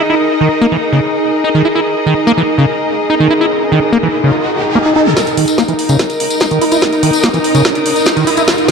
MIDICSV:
0, 0, Header, 1, 6, 480
1, 0, Start_track
1, 0, Tempo, 413793
1, 233, Time_signature, 4, 2, 24, 8
1, 10109, End_track
2, 0, Start_track
2, 0, Title_t, "String section"
2, 0, Program_c, 0, 48
2, 0, Note_on_c, 0, 63, 85
2, 0, Note_on_c, 0, 70, 96
2, 0, Note_on_c, 0, 75, 95
2, 0, Note_on_c, 0, 87, 71
2, 5979, Note_off_c, 0, 63, 0
2, 5993, Note_off_c, 0, 70, 0
2, 5993, Note_on_c, 0, 63, 89
2, 5994, Note_off_c, 0, 75, 0
2, 5994, Note_off_c, 0, 87, 0
2, 6395, Note_on_c, 0, 70, 81
2, 6767, Note_on_c, 0, 75, 76
2, 7373, Note_on_c, 0, 87, 75
2, 10109, Note_off_c, 0, 63, 0
2, 10109, Note_off_c, 0, 70, 0
2, 10109, Note_off_c, 0, 75, 0
2, 10109, Note_off_c, 0, 87, 0
2, 10109, End_track
3, 0, Start_track
3, 0, Title_t, "Ambient pad"
3, 0, Program_c, 1, 92
3, 0, Note_on_c, 1, 63, 76
3, 0, Note_on_c, 1, 68, 75
3, 5980, Note_off_c, 1, 63, 0
3, 5994, Note_on_c, 1, 63, 74
3, 5994, Note_on_c, 1, 70, 77
3, 6018, Note_off_c, 1, 68, 0
3, 10109, Note_off_c, 1, 63, 0
3, 10109, Note_off_c, 1, 70, 0
3, 10109, End_track
4, 0, Start_track
4, 0, Title_t, "Acid bass"
4, 0, Program_c, 2, 38
4, 114, Note_on_c, 2, 64, 73
4, 174, Note_off_c, 2, 64, 0
4, 474, Note_on_c, 2, 51, 74
4, 564, Note_off_c, 2, 51, 0
4, 713, Note_on_c, 2, 58, 100
4, 774, Note_off_c, 2, 58, 0
4, 834, Note_on_c, 2, 52, 78
4, 894, Note_off_c, 2, 52, 0
4, 1074, Note_on_c, 2, 49, 76
4, 1164, Note_off_c, 2, 49, 0
4, 1673, Note_on_c, 2, 63, 89
4, 1734, Note_off_c, 2, 63, 0
4, 1794, Note_on_c, 2, 51, 80
4, 1884, Note_off_c, 2, 51, 0
4, 1914, Note_on_c, 2, 64, 75
4, 1950, Note_off_c, 2, 64, 0
4, 2034, Note_on_c, 2, 64, 75
4, 2094, Note_off_c, 2, 64, 0
4, 2394, Note_on_c, 2, 51, 75
4, 2484, Note_off_c, 2, 51, 0
4, 2634, Note_on_c, 2, 58, 104
4, 2694, Note_off_c, 2, 58, 0
4, 2754, Note_on_c, 2, 52, 75
4, 2814, Note_off_c, 2, 52, 0
4, 2994, Note_on_c, 2, 49, 78
4, 3084, Note_off_c, 2, 49, 0
4, 3594, Note_on_c, 2, 63, 85
4, 3654, Note_off_c, 2, 63, 0
4, 3714, Note_on_c, 2, 51, 75
4, 3804, Note_off_c, 2, 51, 0
4, 3834, Note_on_c, 2, 64, 78
4, 3870, Note_off_c, 2, 64, 0
4, 3954, Note_on_c, 2, 64, 75
4, 4014, Note_off_c, 2, 64, 0
4, 4314, Note_on_c, 2, 51, 75
4, 4404, Note_off_c, 2, 51, 0
4, 4554, Note_on_c, 2, 58, 101
4, 4614, Note_off_c, 2, 58, 0
4, 4674, Note_on_c, 2, 52, 77
4, 4734, Note_off_c, 2, 52, 0
4, 4914, Note_on_c, 2, 49, 76
4, 5004, Note_off_c, 2, 49, 0
4, 5514, Note_on_c, 2, 58, 104
4, 5550, Note_off_c, 2, 58, 0
4, 5634, Note_on_c, 2, 63, 76
4, 5724, Note_off_c, 2, 63, 0
4, 5754, Note_on_c, 2, 63, 105
4, 5874, Note_on_c, 2, 49, 74
4, 5891, Note_off_c, 2, 63, 0
4, 5964, Note_off_c, 2, 49, 0
4, 6233, Note_on_c, 2, 51, 72
4, 6324, Note_off_c, 2, 51, 0
4, 6473, Note_on_c, 2, 58, 106
4, 6534, Note_off_c, 2, 58, 0
4, 6593, Note_on_c, 2, 52, 74
4, 6654, Note_off_c, 2, 52, 0
4, 6834, Note_on_c, 2, 49, 76
4, 6924, Note_off_c, 2, 49, 0
4, 7433, Note_on_c, 2, 63, 85
4, 7494, Note_off_c, 2, 63, 0
4, 7553, Note_on_c, 2, 51, 75
4, 7644, Note_off_c, 2, 51, 0
4, 7674, Note_on_c, 2, 64, 79
4, 7710, Note_off_c, 2, 64, 0
4, 7794, Note_on_c, 2, 64, 76
4, 7854, Note_off_c, 2, 64, 0
4, 8154, Note_on_c, 2, 51, 77
4, 8244, Note_off_c, 2, 51, 0
4, 8394, Note_on_c, 2, 58, 107
4, 8454, Note_off_c, 2, 58, 0
4, 8514, Note_on_c, 2, 52, 75
4, 8574, Note_off_c, 2, 52, 0
4, 8754, Note_on_c, 2, 49, 79
4, 8844, Note_off_c, 2, 49, 0
4, 9354, Note_on_c, 2, 63, 86
4, 9414, Note_off_c, 2, 63, 0
4, 9474, Note_on_c, 2, 51, 79
4, 9564, Note_off_c, 2, 51, 0
4, 9594, Note_on_c, 2, 64, 81
4, 9630, Note_off_c, 2, 64, 0
4, 9714, Note_on_c, 2, 64, 78
4, 9774, Note_off_c, 2, 64, 0
4, 10074, Note_on_c, 2, 51, 69
4, 10109, Note_off_c, 2, 51, 0
4, 10109, End_track
5, 0, Start_track
5, 0, Title_t, "Riser"
5, 0, Program_c, 3, 103
5, 2154, Note_on_c, 3, 60, 75
5, 5994, Note_off_c, 3, 60, 0
5, 5994, Note_on_c, 3, 60, 81
5, 10109, Note_off_c, 3, 60, 0
5, 10109, End_track
6, 0, Start_track
6, 0, Title_t, "Drums"
6, 5993, Note_on_c, 9, 36, 119
6, 5994, Note_on_c, 9, 38, 47
6, 5994, Note_on_c, 9, 42, 67
6, 5999, Note_on_c, 9, 54, 66
6, 6109, Note_off_c, 9, 36, 0
6, 6110, Note_off_c, 9, 38, 0
6, 6110, Note_off_c, 9, 42, 0
6, 6114, Note_on_c, 9, 42, 66
6, 6115, Note_off_c, 9, 54, 0
6, 6120, Note_on_c, 9, 54, 35
6, 6230, Note_off_c, 9, 42, 0
6, 6234, Note_on_c, 9, 46, 106
6, 6236, Note_off_c, 9, 54, 0
6, 6350, Note_off_c, 9, 46, 0
6, 6351, Note_on_c, 9, 54, 78
6, 6354, Note_on_c, 9, 42, 67
6, 6467, Note_off_c, 9, 54, 0
6, 6470, Note_off_c, 9, 42, 0
6, 6473, Note_on_c, 9, 36, 116
6, 6473, Note_on_c, 9, 38, 50
6, 6473, Note_on_c, 9, 42, 63
6, 6478, Note_on_c, 9, 54, 67
6, 6589, Note_off_c, 9, 36, 0
6, 6589, Note_off_c, 9, 38, 0
6, 6589, Note_off_c, 9, 42, 0
6, 6593, Note_off_c, 9, 54, 0
6, 6593, Note_on_c, 9, 54, 36
6, 6594, Note_on_c, 9, 42, 67
6, 6709, Note_off_c, 9, 54, 0
6, 6710, Note_off_c, 9, 42, 0
6, 6714, Note_on_c, 9, 46, 101
6, 6830, Note_off_c, 9, 46, 0
6, 6833, Note_on_c, 9, 42, 70
6, 6837, Note_on_c, 9, 54, 72
6, 6947, Note_off_c, 9, 54, 0
6, 6947, Note_on_c, 9, 54, 70
6, 6949, Note_off_c, 9, 42, 0
6, 6954, Note_on_c, 9, 36, 122
6, 6954, Note_on_c, 9, 38, 51
6, 6954, Note_on_c, 9, 42, 67
6, 7063, Note_off_c, 9, 54, 0
6, 7070, Note_off_c, 9, 36, 0
6, 7070, Note_off_c, 9, 38, 0
6, 7070, Note_off_c, 9, 42, 0
6, 7072, Note_on_c, 9, 54, 39
6, 7073, Note_on_c, 9, 42, 68
6, 7188, Note_off_c, 9, 54, 0
6, 7189, Note_off_c, 9, 42, 0
6, 7194, Note_on_c, 9, 46, 108
6, 7310, Note_off_c, 9, 46, 0
6, 7313, Note_on_c, 9, 42, 67
6, 7314, Note_on_c, 9, 54, 80
6, 7427, Note_off_c, 9, 54, 0
6, 7427, Note_on_c, 9, 54, 69
6, 7429, Note_off_c, 9, 42, 0
6, 7434, Note_on_c, 9, 36, 118
6, 7434, Note_on_c, 9, 38, 57
6, 7434, Note_on_c, 9, 42, 71
6, 7543, Note_off_c, 9, 54, 0
6, 7548, Note_on_c, 9, 54, 40
6, 7550, Note_off_c, 9, 36, 0
6, 7550, Note_off_c, 9, 38, 0
6, 7550, Note_off_c, 9, 42, 0
6, 7554, Note_on_c, 9, 42, 66
6, 7664, Note_off_c, 9, 54, 0
6, 7670, Note_off_c, 9, 42, 0
6, 7673, Note_on_c, 9, 46, 104
6, 7789, Note_off_c, 9, 46, 0
6, 7790, Note_on_c, 9, 54, 79
6, 7794, Note_on_c, 9, 42, 69
6, 7902, Note_off_c, 9, 54, 0
6, 7902, Note_on_c, 9, 54, 63
6, 7910, Note_off_c, 9, 42, 0
6, 7913, Note_on_c, 9, 36, 121
6, 7914, Note_on_c, 9, 38, 56
6, 7914, Note_on_c, 9, 42, 62
6, 8018, Note_off_c, 9, 54, 0
6, 8029, Note_off_c, 9, 36, 0
6, 8030, Note_off_c, 9, 38, 0
6, 8030, Note_off_c, 9, 42, 0
6, 8033, Note_on_c, 9, 54, 37
6, 8034, Note_on_c, 9, 42, 66
6, 8149, Note_off_c, 9, 54, 0
6, 8150, Note_off_c, 9, 42, 0
6, 8154, Note_on_c, 9, 46, 111
6, 8270, Note_off_c, 9, 46, 0
6, 8274, Note_on_c, 9, 42, 64
6, 8276, Note_on_c, 9, 54, 85
6, 8386, Note_off_c, 9, 54, 0
6, 8386, Note_on_c, 9, 54, 66
6, 8390, Note_off_c, 9, 42, 0
6, 8393, Note_on_c, 9, 36, 127
6, 8394, Note_on_c, 9, 38, 60
6, 8394, Note_on_c, 9, 42, 65
6, 8502, Note_off_c, 9, 54, 0
6, 8506, Note_on_c, 9, 54, 42
6, 8509, Note_off_c, 9, 36, 0
6, 8510, Note_off_c, 9, 38, 0
6, 8510, Note_off_c, 9, 42, 0
6, 8514, Note_on_c, 9, 42, 67
6, 8622, Note_off_c, 9, 54, 0
6, 8630, Note_off_c, 9, 42, 0
6, 8634, Note_on_c, 9, 46, 109
6, 8750, Note_off_c, 9, 46, 0
6, 8754, Note_on_c, 9, 42, 67
6, 8757, Note_on_c, 9, 54, 74
6, 8870, Note_off_c, 9, 42, 0
6, 8872, Note_off_c, 9, 54, 0
6, 8872, Note_on_c, 9, 54, 62
6, 8873, Note_on_c, 9, 36, 127
6, 8874, Note_on_c, 9, 38, 64
6, 8874, Note_on_c, 9, 42, 67
6, 8988, Note_off_c, 9, 54, 0
6, 8989, Note_off_c, 9, 36, 0
6, 8989, Note_on_c, 9, 54, 37
6, 8990, Note_off_c, 9, 38, 0
6, 8990, Note_off_c, 9, 42, 0
6, 8994, Note_on_c, 9, 42, 64
6, 9105, Note_off_c, 9, 54, 0
6, 9110, Note_off_c, 9, 42, 0
6, 9114, Note_on_c, 9, 46, 110
6, 9230, Note_off_c, 9, 46, 0
6, 9234, Note_on_c, 9, 42, 65
6, 9239, Note_on_c, 9, 54, 78
6, 9346, Note_off_c, 9, 54, 0
6, 9346, Note_on_c, 9, 54, 74
6, 9350, Note_off_c, 9, 42, 0
6, 9353, Note_on_c, 9, 36, 127
6, 9354, Note_on_c, 9, 38, 73
6, 9354, Note_on_c, 9, 42, 72
6, 9462, Note_off_c, 9, 54, 0
6, 9469, Note_off_c, 9, 36, 0
6, 9470, Note_off_c, 9, 38, 0
6, 9470, Note_off_c, 9, 42, 0
6, 9474, Note_on_c, 9, 42, 64
6, 9479, Note_on_c, 9, 54, 42
6, 9590, Note_off_c, 9, 42, 0
6, 9594, Note_on_c, 9, 46, 111
6, 9595, Note_off_c, 9, 54, 0
6, 9707, Note_on_c, 9, 54, 78
6, 9710, Note_off_c, 9, 46, 0
6, 9714, Note_on_c, 9, 42, 67
6, 9823, Note_off_c, 9, 54, 0
6, 9830, Note_off_c, 9, 42, 0
6, 9833, Note_on_c, 9, 36, 124
6, 9834, Note_on_c, 9, 38, 72
6, 9834, Note_on_c, 9, 42, 62
6, 9837, Note_on_c, 9, 54, 76
6, 9949, Note_off_c, 9, 36, 0
6, 9950, Note_off_c, 9, 38, 0
6, 9950, Note_off_c, 9, 42, 0
6, 9953, Note_off_c, 9, 54, 0
6, 9954, Note_on_c, 9, 42, 64
6, 9956, Note_on_c, 9, 54, 36
6, 10070, Note_off_c, 9, 42, 0
6, 10072, Note_off_c, 9, 54, 0
6, 10074, Note_on_c, 9, 38, 77
6, 10074, Note_on_c, 9, 46, 114
6, 10109, Note_off_c, 9, 38, 0
6, 10109, Note_off_c, 9, 46, 0
6, 10109, End_track
0, 0, End_of_file